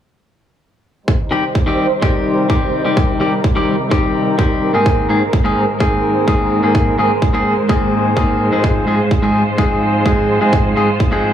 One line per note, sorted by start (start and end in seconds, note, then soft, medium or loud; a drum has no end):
1.08 4.82 C3 medium
1.08 4.82 G3 medium
1.08 4.82 D#4 medium
1.08 2.95 C5 medium
1.08 kick loud
1.31 1.43 D#3 medium
1.31 1.43 G3 medium
1.31 1.44 C4 medium
1.31 1.44 G4 medium
1.55 kick loud
1.66 1.86 D#3 medium
1.66 1.86 G3 medium
1.66 1.86 C4 medium
1.66 1.86 G4 medium
2.01 2.47 D#3 medium
2.01 2.47 G3 medium
2.01 2.47 C4 medium
2.01 2.47 G4 medium
2.01 kick loud
2.49 2.82 D#3 medium
2.49 2.82 G3 medium
2.49 2.82 C4 medium
2.49 2.83 G4 medium
2.49 kick loud
2.84 3.17 D#3 medium
2.84 3.18 G3 medium
2.84 3.18 C4 soft
2.84 3.18 G4 medium
2.97 8.60 A#4 medium
2.97 kick loud
3.20 3.32 D#3 medium
3.20 3.32 G3 medium
3.20 3.32 C4 medium
3.20 3.33 G4 medium
3.44 kick loud
3.55 3.75 D#3 medium
3.55 3.75 G3 medium
3.55 3.75 C4 medium
3.55 3.75 G4 medium
3.90 4.35 D#3 medium
3.90 4.36 G3 medium
3.90 4.36 C4 medium
3.90 4.36 G4 medium
3.90 kick loud
4.38 4.71 D#3 medium
4.38 4.71 G3 medium
4.38 4.71 C4 medium
4.38 4.72 G4 medium
4.38 kick loud
4.73 5.06 G#2 medium
4.73 5.06 D#3 medium
4.73 5.07 A#3 medium
4.73 5.07 C4 medium
4.73 5.07 G#4 medium
4.86 11.33 G#2 medium
4.86 11.33 G#3 medium
4.86 11.33 C5 medium
4.86 kick loud
5.09 5.21 G#2 medium
5.09 5.21 D#3 medium
5.09 5.21 A#3 medium
5.09 5.22 C4 medium
5.09 5.22 G#4 medium
5.33 kick loud
5.44 5.64 G#2 medium
5.44 5.64 D#3 medium
5.44 5.64 A#3 medium
5.44 5.64 C4 medium
5.44 5.64 G#4 medium
5.80 6.24 G#2 medium
5.80 6.25 D#3 medium
5.80 6.25 A#3 medium
5.80 6.25 C4 medium
5.80 6.25 G#4 medium
5.80 kick loud
6.27 6.60 G#2 medium
6.27 6.60 D#3 medium
6.27 6.60 A#3 medium
6.27 6.60 C4 medium
6.27 6.61 G#4 medium
6.27 kick loud
6.62 6.95 G#2 medium
6.62 6.95 D#3 medium
6.62 6.96 A#3 medium
6.62 6.96 C4 soft
6.62 6.96 G#4 medium
6.75 kick loud
6.98 7.10 G#2 medium
6.98 7.10 D#3 medium
6.98 7.10 A#3 medium
6.98 7.11 C4 medium
6.98 7.11 G#4 medium
7.22 kick loud
7.33 7.53 G#2 medium
7.33 7.53 D#3 medium
7.33 7.53 A#3 medium
7.33 7.53 C4 medium
7.33 7.53 G#4 medium
7.69 8.13 G#2 medium
7.69 8.14 D#3 medium
7.69 8.14 A#3 medium
7.69 8.14 C4 medium
7.69 8.14 G#4 medium
7.69 kick loud
8.16 8.49 G#2 medium
8.16 8.49 D#3 medium
8.16 8.49 A#3 medium
8.16 8.49 C4 medium
8.16 8.50 G#4 medium
8.16 kick loud
8.51 8.84 G#2 medium
8.51 8.85 F3 medium
8.51 8.85 G#3 medium
8.51 8.85 C4 medium
8.51 8.85 G#4 medium
8.64 11.33 F4 medium
8.64 kick loud
8.87 8.99 G#2 medium
8.87 8.99 F3 medium
8.87 8.99 G#3 medium
8.87 9.00 C4 medium
8.87 9.00 G#4 medium
9.11 kick loud
9.22 9.42 G#2 medium
9.22 9.42 F3 medium
9.22 9.42 G#3 medium
9.22 9.42 C4 medium
9.22 9.42 G#4 medium
9.58 10.02 G#2 medium
9.58 10.03 F3 medium
9.58 10.03 G#3 medium
9.58 10.03 C4 medium
9.58 10.03 G#4 medium
9.58 kick loud
10.05 10.38 G#2 medium
10.05 10.38 F3 medium
10.05 10.38 G#3 medium
10.05 10.38 C4 medium
10.05 10.38 G#4 medium
10.05 kick loud
10.40 10.73 G#2 medium
10.40 10.73 F3 medium
10.40 10.74 G#3 medium
10.40 10.74 C4 medium
10.40 10.74 G#4 medium
10.53 kick loud
10.76 10.88 G#2 medium
10.76 10.88 F3 medium
10.76 10.88 G#3 medium
10.76 10.89 C4 medium
10.76 10.89 G#4 medium
11.00 kick loud
11.11 11.31 G#2 medium
11.11 11.31 F3 medium
11.11 11.31 G#3 medium
11.11 11.31 C4 medium
11.11 11.31 G#4 medium